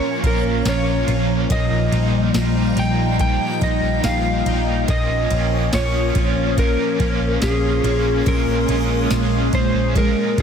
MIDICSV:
0, 0, Header, 1, 8, 480
1, 0, Start_track
1, 0, Tempo, 845070
1, 855, Time_signature, 4, 2, 24, 8
1, 5920, End_track
2, 0, Start_track
2, 0, Title_t, "Synth texture"
2, 0, Program_c, 0, 99
2, 0, Note_on_c, 0, 82, 73
2, 1029, Note_off_c, 0, 82, 0
2, 1068, Note_on_c, 0, 79, 88
2, 2227, Note_off_c, 0, 79, 0
2, 3918, Note_on_c, 0, 84, 86
2, 4310, Note_on_c, 0, 87, 67
2, 4908, Note_off_c, 0, 87, 0
2, 4910, Note_off_c, 0, 84, 0
2, 5633, Note_on_c, 0, 82, 77
2, 5920, Note_off_c, 0, 82, 0
2, 5920, End_track
3, 0, Start_track
3, 0, Title_t, "Electric slide guitar"
3, 0, Program_c, 1, 29
3, 0, Note_on_c, 1, 73, 92
3, 124, Note_off_c, 1, 73, 0
3, 151, Note_on_c, 1, 70, 78
3, 390, Note_off_c, 1, 70, 0
3, 392, Note_on_c, 1, 73, 96
3, 841, Note_off_c, 1, 73, 0
3, 863, Note_on_c, 1, 75, 93
3, 1316, Note_off_c, 1, 75, 0
3, 1587, Note_on_c, 1, 79, 98
3, 1814, Note_off_c, 1, 79, 0
3, 1821, Note_on_c, 1, 79, 104
3, 2041, Note_off_c, 1, 79, 0
3, 2065, Note_on_c, 1, 75, 101
3, 2297, Note_off_c, 1, 75, 0
3, 2299, Note_on_c, 1, 77, 102
3, 2782, Note_off_c, 1, 77, 0
3, 2784, Note_on_c, 1, 75, 99
3, 3262, Note_off_c, 1, 75, 0
3, 3264, Note_on_c, 1, 73, 98
3, 3744, Note_on_c, 1, 70, 92
3, 3754, Note_off_c, 1, 73, 0
3, 4221, Note_off_c, 1, 70, 0
3, 4223, Note_on_c, 1, 68, 87
3, 4704, Note_on_c, 1, 70, 82
3, 4713, Note_off_c, 1, 68, 0
3, 5157, Note_off_c, 1, 70, 0
3, 5422, Note_on_c, 1, 72, 99
3, 5664, Note_off_c, 1, 72, 0
3, 5666, Note_on_c, 1, 70, 103
3, 5920, Note_off_c, 1, 70, 0
3, 5920, End_track
4, 0, Start_track
4, 0, Title_t, "Overdriven electric guitar"
4, 0, Program_c, 2, 29
4, 0, Note_on_c, 2, 46, 86
4, 0, Note_on_c, 2, 53, 82
4, 0, Note_on_c, 2, 58, 93
4, 0, Note_on_c, 2, 61, 81
4, 0, Note_on_c, 2, 65, 96
4, 120, Note_off_c, 2, 65, 0
4, 127, Note_on_c, 2, 65, 57
4, 132, Note_off_c, 2, 61, 0
4, 133, Note_off_c, 2, 46, 0
4, 135, Note_off_c, 2, 53, 0
4, 136, Note_off_c, 2, 58, 0
4, 139, Note_on_c, 2, 61, 45
4, 148, Note_on_c, 2, 58, 43
4, 368, Note_on_c, 2, 53, 59
4, 371, Note_off_c, 2, 58, 0
4, 371, Note_off_c, 2, 65, 0
4, 377, Note_off_c, 2, 61, 0
4, 378, Note_on_c, 2, 58, 65
4, 385, Note_on_c, 2, 61, 72
4, 392, Note_on_c, 2, 65, 69
4, 601, Note_off_c, 2, 65, 0
4, 608, Note_on_c, 2, 65, 59
4, 612, Note_off_c, 2, 53, 0
4, 615, Note_off_c, 2, 61, 0
4, 616, Note_off_c, 2, 58, 0
4, 622, Note_on_c, 2, 61, 51
4, 631, Note_on_c, 2, 58, 45
4, 851, Note_off_c, 2, 65, 0
4, 851, Note_on_c, 2, 46, 81
4, 852, Note_off_c, 2, 58, 0
4, 856, Note_on_c, 2, 55, 78
4, 858, Note_off_c, 2, 61, 0
4, 859, Note_on_c, 2, 58, 76
4, 865, Note_on_c, 2, 63, 84
4, 867, Note_on_c, 2, 65, 91
4, 1084, Note_off_c, 2, 65, 0
4, 1090, Note_on_c, 2, 65, 51
4, 1093, Note_off_c, 2, 46, 0
4, 1096, Note_off_c, 2, 55, 0
4, 1096, Note_off_c, 2, 63, 0
4, 1097, Note_off_c, 2, 58, 0
4, 1103, Note_on_c, 2, 63, 51
4, 1112, Note_on_c, 2, 58, 46
4, 1328, Note_on_c, 2, 55, 72
4, 1330, Note_off_c, 2, 58, 0
4, 1333, Note_off_c, 2, 65, 0
4, 1337, Note_on_c, 2, 58, 69
4, 1339, Note_off_c, 2, 63, 0
4, 1345, Note_on_c, 2, 63, 72
4, 1350, Note_on_c, 2, 65, 72
4, 1558, Note_off_c, 2, 65, 0
4, 1565, Note_on_c, 2, 65, 56
4, 1571, Note_off_c, 2, 55, 0
4, 1572, Note_off_c, 2, 63, 0
4, 1576, Note_off_c, 2, 58, 0
4, 1579, Note_on_c, 2, 63, 56
4, 1590, Note_on_c, 2, 58, 46
4, 1810, Note_off_c, 2, 65, 0
4, 1814, Note_off_c, 2, 58, 0
4, 1814, Note_on_c, 2, 46, 86
4, 1817, Note_off_c, 2, 63, 0
4, 1817, Note_on_c, 2, 55, 85
4, 1821, Note_on_c, 2, 58, 85
4, 1825, Note_on_c, 2, 63, 83
4, 1829, Note_on_c, 2, 65, 98
4, 2044, Note_off_c, 2, 65, 0
4, 2051, Note_on_c, 2, 65, 56
4, 2054, Note_off_c, 2, 46, 0
4, 2056, Note_off_c, 2, 55, 0
4, 2056, Note_off_c, 2, 63, 0
4, 2058, Note_off_c, 2, 58, 0
4, 2063, Note_on_c, 2, 63, 54
4, 2073, Note_on_c, 2, 58, 45
4, 2288, Note_on_c, 2, 55, 63
4, 2290, Note_off_c, 2, 58, 0
4, 2293, Note_off_c, 2, 65, 0
4, 2297, Note_on_c, 2, 58, 64
4, 2299, Note_off_c, 2, 63, 0
4, 2305, Note_on_c, 2, 63, 72
4, 2311, Note_on_c, 2, 65, 71
4, 2525, Note_off_c, 2, 65, 0
4, 2531, Note_off_c, 2, 55, 0
4, 2532, Note_on_c, 2, 65, 54
4, 2536, Note_off_c, 2, 58, 0
4, 2537, Note_off_c, 2, 63, 0
4, 2544, Note_on_c, 2, 63, 57
4, 2555, Note_on_c, 2, 58, 49
4, 2771, Note_off_c, 2, 58, 0
4, 2771, Note_on_c, 2, 46, 78
4, 2774, Note_off_c, 2, 65, 0
4, 2776, Note_on_c, 2, 53, 75
4, 2777, Note_on_c, 2, 58, 76
4, 2780, Note_off_c, 2, 63, 0
4, 2782, Note_on_c, 2, 61, 87
4, 2784, Note_on_c, 2, 65, 96
4, 3004, Note_off_c, 2, 65, 0
4, 3011, Note_on_c, 2, 65, 54
4, 3013, Note_off_c, 2, 46, 0
4, 3015, Note_off_c, 2, 53, 0
4, 3016, Note_off_c, 2, 58, 0
4, 3019, Note_off_c, 2, 61, 0
4, 3025, Note_on_c, 2, 61, 49
4, 3032, Note_on_c, 2, 58, 47
4, 3250, Note_on_c, 2, 53, 64
4, 3251, Note_off_c, 2, 58, 0
4, 3253, Note_off_c, 2, 65, 0
4, 3257, Note_on_c, 2, 58, 66
4, 3258, Note_off_c, 2, 61, 0
4, 3264, Note_on_c, 2, 61, 72
4, 3271, Note_on_c, 2, 65, 76
4, 3481, Note_off_c, 2, 65, 0
4, 3488, Note_on_c, 2, 65, 59
4, 3492, Note_off_c, 2, 53, 0
4, 3494, Note_off_c, 2, 61, 0
4, 3496, Note_off_c, 2, 58, 0
4, 3501, Note_on_c, 2, 61, 55
4, 3510, Note_on_c, 2, 58, 50
4, 3730, Note_on_c, 2, 46, 80
4, 3731, Note_off_c, 2, 58, 0
4, 3731, Note_off_c, 2, 65, 0
4, 3734, Note_off_c, 2, 61, 0
4, 3734, Note_on_c, 2, 53, 82
4, 3737, Note_on_c, 2, 58, 97
4, 3741, Note_on_c, 2, 61, 96
4, 3745, Note_on_c, 2, 65, 95
4, 3966, Note_off_c, 2, 65, 0
4, 3972, Note_off_c, 2, 46, 0
4, 3973, Note_on_c, 2, 65, 54
4, 3975, Note_off_c, 2, 53, 0
4, 3976, Note_off_c, 2, 58, 0
4, 3978, Note_off_c, 2, 61, 0
4, 3987, Note_on_c, 2, 61, 52
4, 3996, Note_on_c, 2, 58, 48
4, 4210, Note_off_c, 2, 58, 0
4, 4210, Note_on_c, 2, 53, 64
4, 4214, Note_off_c, 2, 65, 0
4, 4217, Note_off_c, 2, 61, 0
4, 4217, Note_on_c, 2, 58, 66
4, 4224, Note_on_c, 2, 61, 70
4, 4231, Note_on_c, 2, 65, 72
4, 4443, Note_off_c, 2, 65, 0
4, 4450, Note_on_c, 2, 65, 63
4, 4452, Note_off_c, 2, 53, 0
4, 4455, Note_off_c, 2, 61, 0
4, 4456, Note_off_c, 2, 58, 0
4, 4462, Note_on_c, 2, 61, 53
4, 4472, Note_on_c, 2, 58, 48
4, 4688, Note_on_c, 2, 46, 80
4, 4692, Note_off_c, 2, 65, 0
4, 4693, Note_on_c, 2, 53, 84
4, 4694, Note_off_c, 2, 61, 0
4, 4696, Note_off_c, 2, 58, 0
4, 4698, Note_on_c, 2, 56, 81
4, 4701, Note_on_c, 2, 61, 85
4, 4703, Note_on_c, 2, 65, 93
4, 4916, Note_off_c, 2, 65, 0
4, 4923, Note_on_c, 2, 65, 57
4, 4928, Note_off_c, 2, 61, 0
4, 4931, Note_off_c, 2, 46, 0
4, 4934, Note_off_c, 2, 53, 0
4, 4935, Note_on_c, 2, 61, 53
4, 4936, Note_off_c, 2, 56, 0
4, 4946, Note_on_c, 2, 56, 49
4, 5161, Note_on_c, 2, 53, 70
4, 5163, Note_off_c, 2, 56, 0
4, 5169, Note_off_c, 2, 65, 0
4, 5170, Note_on_c, 2, 56, 72
4, 5171, Note_off_c, 2, 61, 0
4, 5178, Note_on_c, 2, 61, 77
4, 5184, Note_on_c, 2, 65, 75
4, 5402, Note_off_c, 2, 65, 0
4, 5408, Note_off_c, 2, 53, 0
4, 5409, Note_on_c, 2, 65, 60
4, 5412, Note_off_c, 2, 56, 0
4, 5414, Note_off_c, 2, 61, 0
4, 5421, Note_on_c, 2, 61, 59
4, 5432, Note_on_c, 2, 56, 49
4, 5648, Note_on_c, 2, 46, 83
4, 5649, Note_off_c, 2, 56, 0
4, 5651, Note_off_c, 2, 61, 0
4, 5652, Note_off_c, 2, 65, 0
4, 5652, Note_on_c, 2, 53, 81
4, 5656, Note_on_c, 2, 56, 81
4, 5658, Note_on_c, 2, 61, 90
4, 5663, Note_on_c, 2, 65, 98
4, 5878, Note_off_c, 2, 65, 0
4, 5885, Note_on_c, 2, 65, 55
4, 5891, Note_off_c, 2, 46, 0
4, 5892, Note_off_c, 2, 61, 0
4, 5893, Note_off_c, 2, 53, 0
4, 5895, Note_off_c, 2, 56, 0
4, 5899, Note_on_c, 2, 61, 52
4, 5920, Note_off_c, 2, 61, 0
4, 5920, Note_off_c, 2, 65, 0
4, 5920, End_track
5, 0, Start_track
5, 0, Title_t, "Twelve-string acoustic guitar"
5, 0, Program_c, 3, 25
5, 0, Note_on_c, 3, 46, 80
5, 0, Note_on_c, 3, 61, 63
5, 0, Note_on_c, 3, 65, 61
5, 128, Note_off_c, 3, 61, 0
5, 373, Note_off_c, 3, 65, 0
5, 848, Note_off_c, 3, 46, 0
5, 5920, End_track
6, 0, Start_track
6, 0, Title_t, "Analog synth pad"
6, 0, Program_c, 4, 89
6, 0, Note_on_c, 4, 53, 78
6, 0, Note_on_c, 4, 58, 70
6, 0, Note_on_c, 4, 61, 89
6, 834, Note_off_c, 4, 58, 0
6, 836, Note_off_c, 4, 61, 0
6, 854, Note_on_c, 4, 55, 73
6, 854, Note_on_c, 4, 63, 88
6, 2753, Note_off_c, 4, 53, 0
6, 2755, Note_off_c, 4, 55, 0
6, 2755, Note_off_c, 4, 63, 0
6, 2777, Note_on_c, 4, 58, 74
6, 2779, Note_on_c, 4, 53, 78
6, 2779, Note_on_c, 4, 61, 93
6, 4678, Note_off_c, 4, 53, 0
6, 4693, Note_on_c, 4, 56, 80
6, 5920, Note_off_c, 4, 56, 0
6, 5920, Note_off_c, 4, 58, 0
6, 5920, Note_off_c, 4, 61, 0
6, 5920, End_track
7, 0, Start_track
7, 0, Title_t, "Picked electric bass"
7, 0, Program_c, 5, 34
7, 133, Note_on_c, 5, 34, 96
7, 345, Note_off_c, 5, 34, 0
7, 371, Note_on_c, 5, 34, 96
7, 584, Note_off_c, 5, 34, 0
7, 611, Note_on_c, 5, 34, 93
7, 824, Note_off_c, 5, 34, 0
7, 853, Note_on_c, 5, 34, 114
7, 1065, Note_off_c, 5, 34, 0
7, 1092, Note_on_c, 5, 34, 103
7, 1304, Note_off_c, 5, 34, 0
7, 1331, Note_on_c, 5, 34, 98
7, 1544, Note_off_c, 5, 34, 0
7, 1572, Note_on_c, 5, 34, 94
7, 1890, Note_off_c, 5, 34, 0
7, 2055, Note_on_c, 5, 34, 88
7, 2266, Note_off_c, 5, 34, 0
7, 2293, Note_on_c, 5, 34, 112
7, 2505, Note_off_c, 5, 34, 0
7, 2533, Note_on_c, 5, 34, 90
7, 2745, Note_off_c, 5, 34, 0
7, 2775, Note_on_c, 5, 34, 105
7, 2986, Note_off_c, 5, 34, 0
7, 3016, Note_on_c, 5, 34, 106
7, 3227, Note_off_c, 5, 34, 0
7, 3256, Note_on_c, 5, 34, 98
7, 3467, Note_off_c, 5, 34, 0
7, 3495, Note_on_c, 5, 34, 100
7, 3812, Note_off_c, 5, 34, 0
7, 3975, Note_on_c, 5, 34, 99
7, 4186, Note_off_c, 5, 34, 0
7, 4214, Note_on_c, 5, 34, 113
7, 4426, Note_off_c, 5, 34, 0
7, 4451, Note_on_c, 5, 34, 93
7, 4664, Note_off_c, 5, 34, 0
7, 4695, Note_on_c, 5, 34, 105
7, 4906, Note_off_c, 5, 34, 0
7, 4932, Note_on_c, 5, 34, 107
7, 5144, Note_off_c, 5, 34, 0
7, 5173, Note_on_c, 5, 34, 95
7, 5385, Note_off_c, 5, 34, 0
7, 5414, Note_on_c, 5, 34, 107
7, 5731, Note_off_c, 5, 34, 0
7, 5895, Note_on_c, 5, 34, 102
7, 5920, Note_off_c, 5, 34, 0
7, 5920, End_track
8, 0, Start_track
8, 0, Title_t, "Drums"
8, 134, Note_on_c, 9, 36, 87
8, 135, Note_on_c, 9, 51, 45
8, 191, Note_off_c, 9, 36, 0
8, 192, Note_off_c, 9, 51, 0
8, 372, Note_on_c, 9, 51, 63
8, 373, Note_on_c, 9, 38, 105
8, 373, Note_on_c, 9, 54, 66
8, 428, Note_off_c, 9, 51, 0
8, 430, Note_off_c, 9, 38, 0
8, 430, Note_off_c, 9, 54, 0
8, 612, Note_on_c, 9, 51, 42
8, 669, Note_off_c, 9, 51, 0
8, 852, Note_on_c, 9, 51, 66
8, 853, Note_on_c, 9, 36, 112
8, 909, Note_off_c, 9, 51, 0
8, 910, Note_off_c, 9, 36, 0
8, 1093, Note_on_c, 9, 51, 46
8, 1150, Note_off_c, 9, 51, 0
8, 1331, Note_on_c, 9, 51, 66
8, 1332, Note_on_c, 9, 38, 113
8, 1333, Note_on_c, 9, 54, 68
8, 1388, Note_off_c, 9, 51, 0
8, 1389, Note_off_c, 9, 38, 0
8, 1390, Note_off_c, 9, 54, 0
8, 1572, Note_on_c, 9, 51, 44
8, 1629, Note_off_c, 9, 51, 0
8, 1813, Note_on_c, 9, 36, 97
8, 1814, Note_on_c, 9, 51, 58
8, 1870, Note_off_c, 9, 36, 0
8, 1871, Note_off_c, 9, 51, 0
8, 2054, Note_on_c, 9, 36, 88
8, 2055, Note_on_c, 9, 51, 49
8, 2111, Note_off_c, 9, 36, 0
8, 2112, Note_off_c, 9, 51, 0
8, 2293, Note_on_c, 9, 51, 59
8, 2294, Note_on_c, 9, 38, 102
8, 2294, Note_on_c, 9, 54, 68
8, 2350, Note_off_c, 9, 51, 0
8, 2351, Note_off_c, 9, 38, 0
8, 2351, Note_off_c, 9, 54, 0
8, 2535, Note_on_c, 9, 51, 44
8, 2591, Note_off_c, 9, 51, 0
8, 2773, Note_on_c, 9, 51, 65
8, 2774, Note_on_c, 9, 36, 119
8, 2830, Note_off_c, 9, 51, 0
8, 2831, Note_off_c, 9, 36, 0
8, 3013, Note_on_c, 9, 51, 52
8, 3070, Note_off_c, 9, 51, 0
8, 3253, Note_on_c, 9, 51, 65
8, 3254, Note_on_c, 9, 38, 108
8, 3255, Note_on_c, 9, 54, 63
8, 3310, Note_off_c, 9, 51, 0
8, 3311, Note_off_c, 9, 38, 0
8, 3312, Note_off_c, 9, 54, 0
8, 3493, Note_on_c, 9, 51, 42
8, 3494, Note_on_c, 9, 36, 93
8, 3550, Note_off_c, 9, 51, 0
8, 3551, Note_off_c, 9, 36, 0
8, 3735, Note_on_c, 9, 36, 103
8, 3737, Note_on_c, 9, 51, 58
8, 3791, Note_off_c, 9, 36, 0
8, 3794, Note_off_c, 9, 51, 0
8, 3975, Note_on_c, 9, 36, 94
8, 3976, Note_on_c, 9, 51, 47
8, 4032, Note_off_c, 9, 36, 0
8, 4033, Note_off_c, 9, 51, 0
8, 4213, Note_on_c, 9, 51, 62
8, 4214, Note_on_c, 9, 38, 115
8, 4214, Note_on_c, 9, 54, 64
8, 4270, Note_off_c, 9, 51, 0
8, 4271, Note_off_c, 9, 38, 0
8, 4271, Note_off_c, 9, 54, 0
8, 4456, Note_on_c, 9, 51, 44
8, 4513, Note_off_c, 9, 51, 0
8, 4695, Note_on_c, 9, 36, 127
8, 4695, Note_on_c, 9, 51, 70
8, 4751, Note_off_c, 9, 36, 0
8, 4752, Note_off_c, 9, 51, 0
8, 4935, Note_on_c, 9, 51, 52
8, 4991, Note_off_c, 9, 51, 0
8, 5172, Note_on_c, 9, 51, 65
8, 5173, Note_on_c, 9, 38, 107
8, 5174, Note_on_c, 9, 54, 70
8, 5229, Note_off_c, 9, 51, 0
8, 5230, Note_off_c, 9, 38, 0
8, 5231, Note_off_c, 9, 54, 0
8, 5412, Note_on_c, 9, 51, 47
8, 5413, Note_on_c, 9, 36, 91
8, 5469, Note_off_c, 9, 51, 0
8, 5470, Note_off_c, 9, 36, 0
8, 5654, Note_on_c, 9, 36, 96
8, 5657, Note_on_c, 9, 51, 60
8, 5711, Note_off_c, 9, 36, 0
8, 5714, Note_off_c, 9, 51, 0
8, 5896, Note_on_c, 9, 36, 96
8, 5897, Note_on_c, 9, 51, 47
8, 5920, Note_off_c, 9, 36, 0
8, 5920, Note_off_c, 9, 51, 0
8, 5920, End_track
0, 0, End_of_file